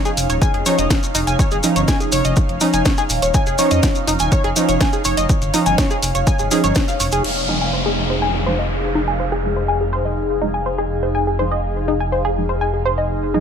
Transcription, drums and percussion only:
0.05 closed hi-hat soft
0.05 maracas soft
0.17 open hi-hat loud
0.17 maracas medium
0.30 closed hi-hat medium
0.30 maracas soft
0.42 kick loud
0.42 closed hi-hat medium
0.42 maracas medium
0.54 closed hi-hat soft
0.66 open hi-hat loud
0.66 maracas medium
0.78 closed hi-hat medium
0.78 maracas soft
0.90 kick loud
0.90 snare loud
0.90 closed hi-hat medium
0.90 maracas medium
1.03 closed hi-hat soft
1.03 maracas soft
1.15 open hi-hat loud
1.15 maracas loud
1.27 closed hi-hat medium
1.27 maracas soft
1.39 kick loud
1.39 closed hi-hat medium
1.39 maracas medium
1.51 closed hi-hat soft
1.51 maracas soft
1.63 open hi-hat loud
1.63 maracas medium
1.76 closed hi-hat medium
1.76 maracas soft
1.88 kick loud
1.88 snare loud
1.88 closed hi-hat medium
1.88 maracas medium
2.00 closed hi-hat soft
2.00 maracas soft
2.12 open hi-hat loud
2.12 maracas medium
2.25 closed hi-hat medium
2.25 maracas soft
2.36 kick loud
2.36 closed hi-hat medium
2.36 maracas soft
2.49 closed hi-hat soft
2.61 open hi-hat loud
2.61 maracas loud
2.73 closed hi-hat medium
2.73 maracas soft
2.85 kick loud
2.85 snare loud
2.85 closed hi-hat medium
2.85 maracas medium
2.97 closed hi-hat soft
2.97 maracas soft
3.10 open hi-hat loud
3.10 maracas medium
3.22 closed hi-hat medium
3.22 maracas soft
3.34 kick loud
3.34 closed hi-hat medium
3.34 maracas medium
3.46 closed hi-hat soft
3.46 maracas soft
3.58 open hi-hat loud
3.58 maracas loud
3.71 closed hi-hat medium
3.71 maracas soft
3.83 kick loud
3.83 snare loud
3.83 closed hi-hat medium
3.83 maracas soft
3.95 closed hi-hat soft
3.95 maracas soft
4.07 open hi-hat loud
4.07 maracas medium
4.19 closed hi-hat medium
4.19 maracas soft
4.32 kick loud
4.32 closed hi-hat medium
4.32 maracas soft
4.44 closed hi-hat soft
4.56 open hi-hat loud
4.56 maracas medium
4.69 closed hi-hat medium
4.69 maracas soft
4.81 kick loud
4.81 snare loud
4.81 closed hi-hat medium
4.81 maracas medium
4.93 closed hi-hat soft
4.93 maracas soft
5.04 open hi-hat loud
5.04 maracas medium
5.17 closed hi-hat medium
5.17 maracas soft
5.29 kick loud
5.29 closed hi-hat medium
5.29 maracas medium
5.42 closed hi-hat soft
5.42 maracas soft
5.54 open hi-hat loud
5.54 maracas medium
5.66 closed hi-hat medium
5.66 maracas soft
5.78 kick loud
5.78 snare loud
5.78 closed hi-hat medium
5.78 maracas soft
5.91 closed hi-hat soft
5.91 maracas soft
6.03 open hi-hat loud
6.03 maracas medium
6.15 closed hi-hat medium
6.15 maracas soft
6.27 kick loud
6.27 closed hi-hat medium
6.27 maracas soft
6.39 closed hi-hat soft
6.39 maracas soft
6.51 open hi-hat loud
6.51 maracas medium
6.64 closed hi-hat medium
6.64 maracas soft
6.75 kick loud
6.75 snare loud
6.75 closed hi-hat medium
6.75 maracas medium
6.88 closed hi-hat soft
6.88 maracas soft
7.00 open hi-hat loud
7.00 maracas medium
7.12 closed hi-hat medium
7.12 maracas soft
7.24 crash medium

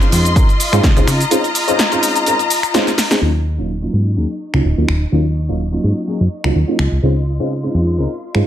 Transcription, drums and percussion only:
0.01 closed hi-hat soft
0.01 shaker soft
0.12 open hi-hat loud
0.12 shaker medium
0.25 closed hi-hat medium
0.25 shaker soft
0.36 kick loud
0.36 closed hi-hat medium
0.36 shaker soft
0.49 closed hi-hat soft
0.49 shaker soft
0.60 open hi-hat loud
0.60 shaker medium
0.73 finger snap medium
0.73 closed hi-hat medium
0.73 shaker soft
0.84 kick loud
0.84 snare loud
0.84 closed hi-hat medium
0.84 shaker soft
0.97 closed hi-hat soft
0.97 shaker soft
1.08 finger snap medium
1.08 open hi-hat loud
1.08 shaker medium
1.20 closed hi-hat medium
1.20 shaker soft
1.31 closed hi-hat medium
1.31 shaker soft
1.44 closed hi-hat soft
1.44 shaker soft
1.55 open hi-hat loud
1.55 shaker medium
1.68 closed hi-hat medium
1.68 shaker soft
1.79 snare loud
1.79 closed hi-hat medium
1.79 shaker soft
1.92 closed hi-hat soft
1.92 shaker soft
2.03 open hi-hat loud
2.03 shaker medium
2.16 closed hi-hat medium
2.16 shaker soft
2.26 closed hi-hat medium
2.26 shaker soft
2.39 closed hi-hat soft
2.39 shaker soft
2.50 open hi-hat loud
2.50 shaker medium
2.63 finger snap medium
2.63 closed hi-hat medium
2.63 shaker soft
2.74 snare loud
2.74 closed hi-hat medium
2.74 shaker soft
2.87 snare medium
2.87 closed hi-hat soft
2.87 shaker soft
2.98 snare medium
2.98 open hi-hat loud
2.98 shaker medium
3.11 snare medium
3.11 open hi-hat medium
3.11 shaker soft
4.54 finger snap medium
4.88 finger snap medium
6.44 finger snap medium
6.79 finger snap medium
8.35 finger snap medium

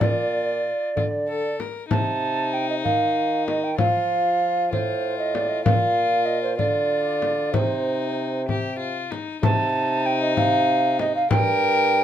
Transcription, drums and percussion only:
0.01 frame drum medium
0.97 frame drum soft
1.60 frame drum soft
1.91 frame drum medium
2.86 frame drum soft
3.48 frame drum soft
3.78 frame drum medium
4.73 frame drum soft
5.35 frame drum soft
5.66 frame drum medium
6.59 frame drum soft
7.22 frame drum soft
7.54 frame drum medium
8.49 frame drum soft
9.12 frame drum soft
9.43 frame drum medium
10.37 frame drum medium
10.99 frame drum medium
11.31 frame drum medium

